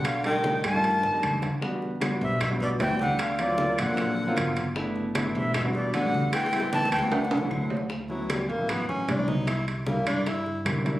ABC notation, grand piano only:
X:1
M:4/4
L:1/16
Q:1/4=153
K:Dmix
V:1 name="Grand piano"
z2 [G,A,D^D]4 z [G,A,=D=F]3 z [G,A,D^D]3 z2 | [G,B,DF]3 z [G,B,DF]4 z [G,B,DF]3 z [G,B,DF]3 | z2 [F,^A,C^E]4 z [F,A,CE]3 z [F,A,CE]3 z2 | [A,B,DE]3 z [A,B,DE]4 z [G,B,DF]3 z [G,B,DF]3 |
z2 [G,B,CE]4 z [G,B,CF] z3 [F,A,CE]3 z2 | [K:D] z2 [F,B,CE]4 z [F,B,CE]4 z2 [F,B,CE] [F,B,CE]2 | z4 [G,_B,DE]6 z2 [G,B,DE] z [G,B,DE]2 |]